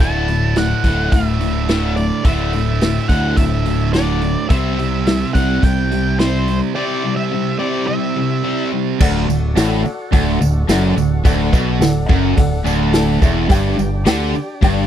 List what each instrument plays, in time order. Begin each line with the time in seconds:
0.00 fingered electric bass D1, overdriven electric guitar D2 A2 D3, distorted electric guitar A3 E4, lead electric guitar A5
0.28 overdriven electric guitar D2 A2, open hi-hat
0.56 overdriven electric guitar D2 A2, lead electric guitar F#5, snare, open hi-hat
0.84 fingered electric bass D1, overdriven electric guitar D2 A2 D3, kick, open hi-hat
1.12 fingered electric bass D1, overdriven electric guitar D2 A2, lead electric guitar E5, kick, open hi-hat
1.41 overdriven electric guitar D2 A2, open hi-hat
1.69 overdriven electric guitar D2 A2 D3, snare, open hi-hat
1.97 overdriven electric guitar D2 A2, lead electric guitar D5, open hi-hat
2.25 fingered electric bass D1, overdriven electric guitar D2 A2 D3, distorted electric guitar A3 E4, lead electric guitar E5, kick, open hi-hat
2.53 overdriven electric guitar D2 A2, open hi-hat
2.81 overdriven electric guitar D2 A2, snare, open hi-hat
3.08 fingered electric bass D2, overdriven electric guitar D2 A2 D3, lead electric guitar F#5, kick, open hi-hat
3.37 fingered electric bass D1, overdriven electric guitar D2 A2, lead electric guitar E5, kick, open hi-hat
3.65 overdriven electric guitar D2 A2, open hi-hat
3.93 overdriven electric guitar D2 A2 D3, lead electric guitar D5, snare, open hi-hat
4.21 overdriven electric guitar D2 A2, open hi-hat
4.49 fingered electric bass C2, overdriven electric guitar C3 G3 C4, distorted electric guitar E4 G4 C5, lead electric guitar E5, kick, open hi-hat
4.78 overdriven electric guitar C3 G3, open hi-hat
5.07 overdriven electric guitar C3 G3, snare, open hi-hat
5.34 fingered electric bass C2, overdriven electric guitar C3 G3 C4, lead electric guitar F#5, kick, open hi-hat
5.63 fingered electric bass C2, overdriven electric guitar C3 G3, lead electric guitar G5, kick, open hi-hat
5.91 overdriven electric guitar C3 G3, open hi-hat
6.19 overdriven electric guitar C3 G3 C4, lead electric guitar C5, snare, open hi-hat
6.48 overdriven electric guitar C3 G3, open hi-hat
6.75 overdriven electric guitar C3 G3 C4, distorted electric guitar E4 G4 C5, lead electric guitar D5
7.04 overdriven electric guitar C3 G3
7.16 lead electric guitar E5
7.31 overdriven electric guitar C3 G3
7.59 overdriven electric guitar C3 G3 C4, lead electric guitar D5
7.87 overdriven electric guitar C3 G3, lead electric guitar E5
8.16 overdriven electric guitar C3 G3
8.44 overdriven electric guitar C3 G3 C4
8.72 overdriven electric guitar C3 G3
9.00 fingered electric bass D1, overdriven electric guitar D2, tonewheel organ G4 A#4 D#5 G5, grand piano A4 D5 F#5, kick, crash, tambourine
9.20 tonewheel organ F#4 A4 D5 F#5
9.29 fingered electric bass D1, overdriven electric guitar D2, tambourine
9.55 fingered electric bass A1, overdriven electric guitar A2, grand piano A4 D5 F#5, snare, open hi-hat, tambourine
9.85 muted overdriven electric guitar stroke, muted distorted electric guitar stroke, tambourine
10.12 fingered electric bass D1, overdriven electric guitar D2, grand piano A4 D5 F#5, kick, open hi-hat
10.41 fingered electric bass D1, overdriven electric guitar D2, tambourine
10.67 fingered electric bass F#1, overdriven electric guitar F#2, grand piano A4 D5 F#5, snare, open hi-hat, tambourine
10.97 fingered electric bass D1, overdriven electric guitar D2, tambourine
11.25 fingered electric bass D1, overdriven electric guitar D2, grand piano A4 D5 F#5, tonewheel organ A4 D5 F#5, kick, open hi-hat, tambourine
11.53 fingered electric bass B1, overdriven electric guitar B2, kick, tambourine
11.80 fingered electric bass D1, overdriven electric guitar D2, grand piano A4 D5 F#5, snare, open hi-hat, tambourine
12.09 fingered electric bass F#1, overdriven electric guitar F#2, kick, tambourine
12.37 fingered electric bass D1, overdriven electric guitar D2, grand piano A4 D5 F#5, kick, open hi-hat
12.64 fingered electric bass D1, overdriven electric guitar D2, grand piano A5, tambourine
12.93 grand piano A4 D5 F#5 A5, snare, open hi-hat, tambourine
13.22 fingered electric bass E1, overdriven electric guitar E2, grand piano E5, kick, tambourine
13.49 fingered electric bass G1, overdriven electric guitar G2, tonewheel organ D4 G4 D5 G5, grand piano G4 D5 G5, kick, open hi-hat, tambourine
13.78 fingered electric bass G1, overdriven electric guitar G2, tambourine
14.05 fingered electric bass D2, overdriven electric guitar D3, grand piano G4 D5 G5, snare, open hi-hat, tambourine
14.33 muted overdriven electric guitar stroke, muted fingered electric bass stroke, muted distorted electric guitar stroke, tambourine
14.61 fingered electric bass G1, overdriven electric guitar G2, grand piano G4 D5 G5, kick, open hi-hat